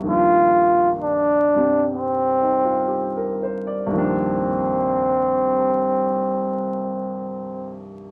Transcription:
X:1
M:4/4
L:1/16
Q:"Swing" 1/4=57
K:Cm
V:1 name="Muted trumpet"
F4 D4 C6 z2 | C16 |]
V:2 name="Grand piano"
z8 z2 E F G B c d | z16 |]
V:3 name="Grand piano" clef=bass
[C,,G,,E,F,B,D]6 [G,,C,G,C]8- [G,,C,G,C]2 | [C,,G,,E,F,B,D]16 |]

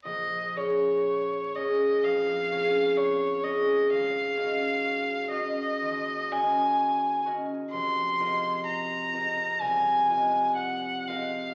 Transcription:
X:1
M:4/4
L:1/8
Q:1/4=63
K:Bbm
V:1 name="Violin"
e d2 e f2 d e | f3 e2 a2 z | c'2 b2 a2 g f |]
V:2 name="Harp"
B,,, [DABd]2 [DABd] F,, [DABd]2 [DABd] | A,,, [DGBe]2 [DGBe] E,, [DGBe]2 [DGBe] | F,,, [CFBe]2 [CFBe] C,, [CFBe]2 [CFBe] |]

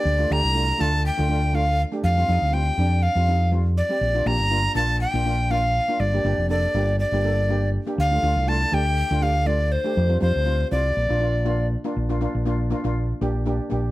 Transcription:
X:1
M:4/4
L:1/16
Q:"Swing 16ths" 1/4=121
K:Bb
V:1 name="Recorder"
d2 b4 a2 g4 f4 | f4 g4 f4 z2 d2- | d2 b4 a2 g4 f4 | d4 d4 d6 z2 |
f4 a2 g4 f2 d2 c2- | c2 c4 d8 z2 | z16 |]
V:2 name="Steel pan"
z [A,DF] [A,DG] z [A,DF] z [A,DF]2 z [A,DF] [A,DF] z [A,DF]2 z [A,DG] | z [G,CF] [G,CE] z [G,CF] z [G,CD]2 z [G,CF] [G,CE] z [G,CF]2 z [G,CG] | z [B,DF] [B,DG] z [B,DF] z [B,DF]2 z [B,DF] [B,DF] z [B,DF]2 z [B,DF] | z [B,DG] [B,DG] z [B,DA] z [B,DG]2 z [B,DG] [B,DA] z [B,DG]2 z [B,DG] |
z [A,DF] [A,DF] z [A,DF] z [A,DG]2 z [A,DF] [A,DG] z [A,DF]2 z [A,DG] | z [G,CF] [G,CF] z [G,CF] z [G,CF]2 z [B,DF] [B,DF] z [B,DF]2 z [B,DF] | z [B,DF] [B,DF] z [B,DF] z [B,DF] [B,DF]2 z [B,DG] z [B,DG] z [B,DG]2 |]
V:3 name="Fingered electric bass" clef=bass
D,,2 D,, C,,3 D,,3 D,,6- D,, | F,,2 F,, D,,3 F,,3 F,,6- F,, | B,,,2 B,,, G,,,3 B,,,3 B,,,6- B,,, | G,,,2 G,,, F,,,3 G,,,3 G,,,6- G,,, |
D,,2 D,, C,,3 D,,3 D,,6- D,, | F,,2 F,, D,,3 C,,2 B,,, B,,,6- B,,, | B,,,3 B,,,4 B,,,3 B,,,4 B,,,2 |]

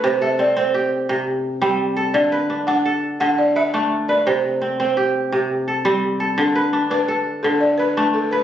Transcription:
X:1
M:12/8
L:1/8
Q:3/8=113
K:Clyd
V:1 name="Balafon"
c e d c8 z | d2 z f3 f d e3 d | c3 c2 z6 z | A3 B3 A d B2 A B |]
V:2 name="Kora"
B A C2 G3 z2 C2 A- | A B D2 A3 z B D2 B- | B z C2 G3 z A C2 A- | A B D2 A3 z B D2 B |]
V:3 name="Kora" clef=bass
C,2 z C2 z C,2 z G,2 z | D,2 z D2 z D,2 z A,2 z | C,2 z C2 z C,2 z G,2 z | D,2 z D2 z D,2 z A,2 z |]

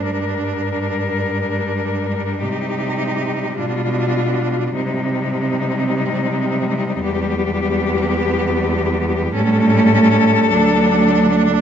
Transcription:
X:1
M:6/8
L:1/8
Q:3/8=52
K:Cdor
V:1 name="Cello"
B6 | G3 F3 | E6 | [K:Edor] G6 |
A6 |]
V:2 name="Cello"
D6 | E3 D3 | C6 | [K:Edor] B,6 |
C3 D3 |]
V:3 name="Cello" clef=bass
G,6- | G,6 | G,6- | [K:Edor] G,6 |
G,3 F,3 |]
V:4 name="Cello" clef=bass
G,,6 | C,3 =B,,3 | C,6 | [K:Edor] E,,6 |
A,,3 D,,3 |]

